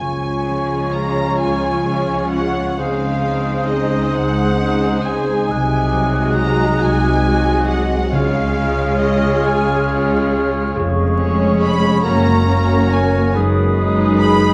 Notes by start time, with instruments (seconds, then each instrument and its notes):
Already playing: harp C#4, violin section G#5
0.00 double bass section C#2, cello section C#3, harp C#3, french horn section F3 C#4, clarinet F4, oboe C#5, flute C#6
0.46 harp F3, viola section G#3 F4, violin section G#4 C#5
0.94 harp C#4, violin section A#5
1.41 double bass section C#2, cello section C#3, harp F3, violin section G#5
1.85 viola section G#3 F4, harp F4, violin section G#4 C#5
2.32 harp C#4, violin section F#5
2.78 double bass section C#2, harp C#3, cello section C#3, viola section G#3 D#4, french horn section G#3 C4, violin section G#4 C5 F5, clarinet G#4, oboe C5, flute D#6
3.23 viola section G#3 D#4, harp G#3, violin section G#4 C5
3.68 harp C4, violin section D#5
4.13 double bass section C#2, cello section C#3, harp D#4, violin section F#5
4.58 viola section G#3 D#4, harp G#4, violin section G#4 C5
5.03 harp C4, violin section G#5
5.48 double bass section C2, harp C3, cello section C3, french horn section F#3 D#4, oboe D#5, flute F#6
5.92 harp F#3, viola section G#3 F#4, violin section G#4 D#5
6.36 harp G#3, violin section A#5
6.81 double bass section C2, cello section C3, harp D#4, violin section G#5
7.25 viola section G#3 F#4, harp F#4, violin section G#4 D#5
7.69 harp G#3, violin section F#5
8.11 double bass section C#2, timpani C#3, cello section C#3, harp C#3, viola section G#3 F4, french horn section G#3 C#4, violin section G#4 C#5 F5, clarinet G#4, oboe C#5, flute F6
8.54 viola section G#3 F4, harp G#3, violin section G#4 C#5
9.00 harp C#4, violin section D#5
9.44 double bass section C#2, cello section C#3, harp F4, violin section G#5
9.88 viola section G#3 F4, violin section G#4 C#5, harp G#4
10.74 double bass section F1, harp F2, cello section F2, french horn section G#3 C#4, clarinet G#4, oboe C#5, flute C#6
11.17 viola section G#3 C#4, harp G#3, violin section G#4 C#5
11.62 harp C#4 G#4, violin section B5
12.04 double bass section F#1, cello section F#2, harp F#2, viola section A#3 C#4, french horn section A#3 C#4, violin section F#4 C#5 A#5, clarinet A#4
12.46 viola section A#3 C#4, harp A#3, violin section F#4 C#5
12.91 harp C#4 F#4, violin section G#5
13.34 double bass section F#1, cello section F#2, harp F#2, french horn section G#3 D#4, clarinet G#4, oboe B4, flute D#6
13.78 harp G#3, viola section G#3 D#4, violin section G#4 B4
14.20 harp D#4 G#4, violin section B5